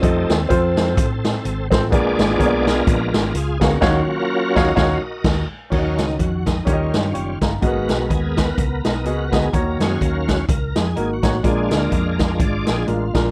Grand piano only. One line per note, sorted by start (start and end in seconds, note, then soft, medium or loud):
0.02 0.33 C4 medium
0.02 0.33 F4 medium
0.02 0.33 A4 medium
0.02 0.33 D#5 medium
0.49 1.05 C4 medium
0.49 1.05 F4 medium
0.49 1.05 A4 medium
0.49 1.06 C5 medium
1.71 1.83 C4 medium
1.71 1.83 F4 medium
1.71 1.84 A4 medium
1.71 1.84 C5 medium
1.90 2.63 A#2 medium
1.90 2.22 B3 medium
1.90 2.22 G#4 medium
1.90 2.22 A#4 medium
1.90 2.22 D5 medium
2.38 2.94 B3 medium
2.38 2.95 G#4 medium
2.38 2.95 A#4 medium
2.38 2.46 C#5 medium
2.46 2.98 D5 medium
3.60 3.73 B3 medium
3.60 3.73 G#4 medium
3.60 3.73 A#4 medium
3.60 3.73 F5 medium
3.81 4.00 D#3 loud
3.81 4.00 D#4 medium
3.81 4.00 F#4 loud
3.81 4.00 C#5 medium
3.81 4.01 F5 medium
4.55 4.70 D#4 loud
4.55 4.70 F#4 medium
4.55 4.70 C#5 medium
4.55 4.71 F5 loud
4.75 4.94 D#4 medium
4.75 4.94 F#4 medium
4.75 4.95 C#5 loud
4.75 4.95 F5 loud
5.70 6.42 D#3 medium
5.70 6.27 C#4 medium
5.70 6.27 F#4 medium
5.70 6.27 A#4 medium
5.70 5.79 C#5 medium
5.78 6.30 D#5 medium
6.65 7.38 D#3 medium
6.65 7.06 C#4 medium
6.65 7.06 G4 medium
6.65 7.06 A#4 medium
6.65 6.74 C#5 medium
6.73 7.09 D#5 medium
7.13 7.40 G5 soft
7.13 7.40 C#6 medium
7.42 7.88 F5 soft
7.42 7.87 A#5 medium
7.61 8.33 G#2 medium
7.61 7.68 A#3 medium
7.61 8.18 F#4 medium
7.61 8.18 G#4 medium
7.61 8.18 D#5 medium
7.67 8.20 B3 medium
9.05 9.21 B3 medium
9.05 9.21 F#4 medium
9.05 9.21 G#4 medium
9.05 9.22 D#5 medium
9.32 9.44 B3 medium
9.32 9.45 F#4 medium
9.32 9.45 G#4 medium
9.32 9.45 D#5 medium
9.52 10.24 D#3 medium
9.52 10.09 A#3 medium
9.52 10.09 D#4 medium
9.52 10.09 F#4 medium
9.52 10.09 C#5 medium
10.96 11.12 A#3 medium
10.96 11.12 D#4 medium
10.96 11.12 F#4 medium
10.96 11.13 A#4 medium
11.23 11.35 A#3 medium
11.23 11.35 D#4 medium
11.23 11.35 F#4 medium
11.23 11.36 C#5 medium
11.43 12.15 A#2 medium
11.43 12.00 G#3 medium
11.43 12.00 D4 medium
11.43 12.00 F4 medium
11.43 12.00 A#4 medium
12.86 13.03 G#3 medium
12.86 13.03 D4 soft
12.86 13.03 F4 medium
12.86 13.03 A#4 medium
13.14 13.26 G#3 medium
13.14 13.26 D4 medium
13.14 13.27 F4 medium
13.14 13.27 A#4 medium